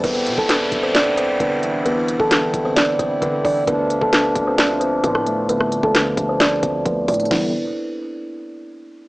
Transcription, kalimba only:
X:1
M:4/4
L:1/16
Q:1/4=132
K:Ephr
V:1 name="Kalimba"
[B,B]3 [Aa] [B,B]3 [Cc] [Dd]2 [Cc]2 [B,B]4 | [B,B]3 [Aa] [B,B]3 [Cc] [Dd]2 [Cc]2 [B,B]2 [Dd]2 | [B,B]3 [Aa] [B,B]3 [Cc] [Dd]2 [Cc]2 [B,B]4 | [B,B]3 [Aa] [B,B]3 [Cc] [Dd]2 [Cc]2 [B,B]2 [Dd]2 |
E2 z12 z2 |]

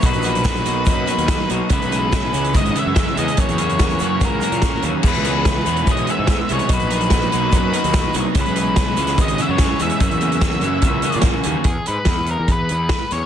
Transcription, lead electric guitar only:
X:1
M:4/4
L:1/16
Q:1/4=145
K:Elyd
V:1 name="Lead electric guitar"
B8 B6 z2 | B8 d2 e2 e2 d2 | c8 A6 z2 | B8 d2 e2 e2 c2 |
B8 B6 z2 | B8 d2 e c3 e2- | e12 z4 | G2 B4 A2 B6 c2 |]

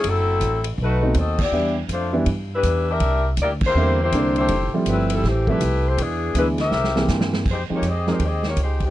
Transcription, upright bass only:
X:1
M:4/4
L:1/8
Q:"Swing" 1/4=162
K:C
V:1 name="Upright bass" clef=bass
^F,,,2 A,,,2 B,,,2 ^D,,2 | E,,2 F,,2 G,,2 E,,2 | C,,2 D,,2 E,,2 C,,2 | F,,, z G,,,2 A,,,2 C,,2 |
E,,2 D,,2 C,,2 G,,2 | [K:Fm] F,, z F,,2 E,,2 D,,2 |]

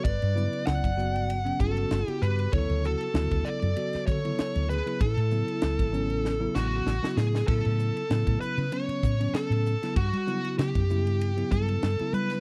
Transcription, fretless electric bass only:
X:1
M:4/4
L:1/16
Q:"Swing 16ths" 1/4=97
K:A
V:1 name="Fretless electric bass" clef=bass
=G,,, =G,,2 z C,, F,,,2 G,,,3 G,,,2 G,,, z G,,2 | D,, D,,2 z D,, D,, z F,, z2 D,2 z D,,2 z | A,,, A,,2 z C,, G,,,2 A,,,3 A,,,2 A,,, z A,,2 | A,, A,,2 z A,, A,, z C, z2 A,,2 z A,,2 z |
=G,, =G,2 z C, F,,2 G,,3 G,,2 G,, z G,2 |]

